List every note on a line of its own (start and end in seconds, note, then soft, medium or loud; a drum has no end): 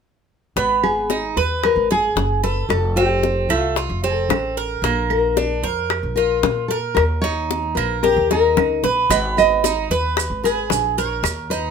0.56 1.32 G#1 medium
0.56 1.09 B3 medium
0.56 high bongo medium
0.83 1.36 G#4 loud
0.83 high bongo soft
0.83 claves medium
1.10 1.36 D#4 medium
1.10 high bongo medium
1.36 1.74 D#2 medium
1.36 1.64 B4 medium
1.36 1.89 B4 medium
1.64 1.91 A#4 loud
1.64 high bongo medium
1.64 claves medium
1.76 2.14 G#1 medium
1.91 2.42 G#4 medium
1.91 2.41 G#4 loud
1.91 high bongo soft
2.16 2.67 F#1 medium
2.16 high bongo medium
2.16 low bongo medium
2.43 2.95 A4 medium
2.43 2.68 B4 medium
2.43 high bongo soft
2.69 3.45 F1 medium
2.69 2.97 A4 medium
2.69 high bongo medium
2.69 claves medium
2.96 3.49 C4 medium
2.96 3.50 G4 medium
2.96 high bongo soft
3.23 high bongo medium
3.49 3.88 C2 medium
3.49 3.76 A3 medium
3.49 4.00 F4 medium
3.49 high bongo soft
3.49 claves medium
3.76 4.03 F4 medium
3.76 high bongo medium
3.89 4.28 F1 medium
4.03 4.55 C4 medium
4.03 4.54 A4 medium
4.03 high bongo soft
4.29 4.80 A1 medium
4.29 high bongo medium
4.29 low bongo medium
4.29 claves medium
4.57 4.83 A#4 medium
4.82 5.59 A#1 medium
4.82 5.36 A#3 medium
4.82 high bongo medium
5.10 5.60 A#4 medium
5.10 high bongo soft
5.10 claves medium
5.37 5.63 D4 medium
5.37 high bongo medium
5.63 6.01 F2 medium
5.63 6.16 A#4 medium
5.63 6.13 C5 medium
5.90 high bongo medium
5.90 claves medium
6.03 6.42 A#1 medium
6.16 6.69 F4 medium
6.16 6.68 A#4 medium
6.16 high bongo soft
6.43 6.94 A#2 medium
6.43 high bongo medium
6.43 low bongo medium
6.68 6.76 A4 medium
6.68 7.22 A#4 medium
6.68 high bongo soft
6.95 7.73 D#2 medium
6.95 7.02 A#4 medium
6.95 high bongo medium
6.95 claves medium
7.22 7.76 D#4 medium
7.22 7.72 C#5 loud
7.22 high bongo soft
7.51 high bongo medium
7.75 8.15 A#1 medium
7.75 8.03 A#3 medium
7.75 8.01 B4 medium
7.75 high bongo soft
7.75 claves medium
8.03 8.30 G4 medium
8.03 8.30 A#4 medium
8.03 high bongo medium
8.16 8.55 D#2 medium
8.31 8.83 D#4 medium
8.31 8.81 A#4 medium
8.31 high bongo medium
8.57 8.81 C#2 medium
8.57 low bongo loud
8.57 claves medium
8.83 9.08 A#1 medium
8.83 9.10 B4 medium
8.83 low bongo medium
9.10 9.86 G#1 medium
9.10 9.63 B3 medium
9.10 9.18 D#5 medium
9.10 high bongo medium
9.10 maracas medium
9.37 9.88 D#5 loud
9.37 high bongo soft
9.37 claves medium
9.37 maracas soft
9.64 9.90 D#4 medium
9.64 high bongo medium
9.64 maracas medium
9.90 10.29 D#2 medium
9.90 10.43 B4 medium
9.90 maracas soft
10.17 high bongo medium
10.17 claves medium
10.17 maracas medium
10.30 10.69 G#1 medium
10.44 10.97 G#4 medium
10.44 10.98 B4 medium
10.44 high bongo soft
10.44 maracas soft
10.70 11.21 A#1 medium
10.70 high bongo medium
10.70 low bongo medium
10.70 maracas medium
10.98 11.50 A#4 medium
10.98 11.48 C#5 medium
10.98 high bongo soft
10.98 maracas soft
11.23 11.71 D#2 medium
11.23 high bongo medium
11.23 claves medium
11.23 maracas medium
11.50 11.71 D#4 medium
11.50 11.71 B4 medium
11.50 high bongo soft
11.50 maracas soft